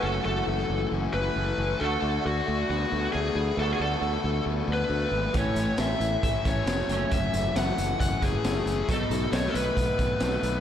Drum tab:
HH |--------|--------|--------|xxxxxxxx|
SD |--------|--------|--------|--o---o-|
BD |--------|--------|--------|o---oo--|

HH |xxxxxxxx|xxxxxxxx|
SD |--o---o-|--o---o-|
BD |o---oo--|o---oo--|